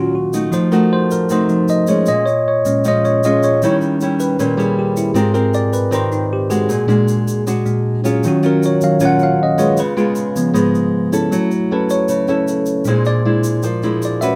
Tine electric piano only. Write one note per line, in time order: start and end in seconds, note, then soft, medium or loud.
0.00 0.48 D#3 soft
0.00 0.48 F#3 soft
0.00 0.49 C#4 soft
0.00 0.54 F4 medium
0.00 0.15 F#4 medium
0.15 0.33 F#4 medium
0.51 1.06 F3 soft
0.51 1.07 A3 soft
0.51 1.07 D#4 soft
0.51 0.72 C5 medium
0.72 0.90 A#4 medium
0.93 1.11 C5 medium
1.12 1.30 A#4 medium
1.32 1.50 C5 medium
1.49 1.66 F3 soft
1.49 1.67 A3 soft
1.49 1.67 D#4 soft
1.70 1.88 D#5 medium
1.89 2.07 C#5 medium
2.08 2.26 D#5 medium
2.26 2.45 C#5 medium
2.48 2.65 C#5 medium
2.65 3.57 A#2 soft
2.65 3.58 G#3 soft
2.65 3.58 C#4 soft
2.88 3.05 D#5 medium
3.05 3.23 C#5 medium
3.25 3.43 D#5 medium
3.44 3.62 C#5 medium
3.62 4.16 D#3 soft
3.62 4.17 G3 soft
3.62 4.17 C#4 soft
3.62 3.75 C#5 medium
4.20 4.38 B4 medium
4.41 4.58 A#4 medium
4.59 4.77 G#4 medium
4.79 4.97 G4 medium
4.97 5.15 E4 medium
5.14 5.40 G#2 soft
5.14 5.41 C4 medium
5.14 5.35 F4 medium
5.34 5.53 A#4 medium
5.55 5.73 D5 medium
5.73 5.92 B4 medium
5.95 6.12 C5 medium
6.12 6.31 D#4 soft
6.33 6.51 G4 medium
6.50 6.86 G#4 medium
6.87 7.14 A#2 soft
6.87 7.14 G#3 soft
6.87 7.14 D4 soft
7.65 7.83 A#2 soft
7.65 7.83 G#3 soft
7.65 7.83 D4 soft
8.06 8.24 G#4 medium
8.25 8.79 D#3 soft
8.25 8.79 F#3 soft
8.25 8.80 C#4 medium
8.25 8.45 F#4 medium
8.46 8.63 A#4 medium
8.66 8.83 C#5 medium
8.83 9.00 D#3 soft
8.83 9.00 F#3 soft
8.83 9.00 C#4 soft
8.83 9.02 F5 medium
9.05 9.22 F#5 medium
9.23 9.40 F5 medium
9.43 9.60 D#5 medium
9.59 9.78 C#5 medium
9.80 9.98 B4 medium
9.97 10.09 F4 medium
10.36 10.61 C#3 soft
10.36 10.62 F3 soft
10.36 10.62 B3 soft
11.31 11.57 F#3 soft
11.31 11.58 A3 soft
11.31 11.58 E4 medium
11.73 11.91 B4 medium
11.91 12.44 C#5 medium
12.49 12.67 A4 soft
12.85 14.36 A#2 soft
12.85 14.36 G#3 soft
12.85 14.36 D4 soft
12.85 13.06 C5 medium
13.07 13.60 D5 medium
13.65 13.83 A#4 soft
14.05 14.22 D5 medium
14.21 14.36 E5 medium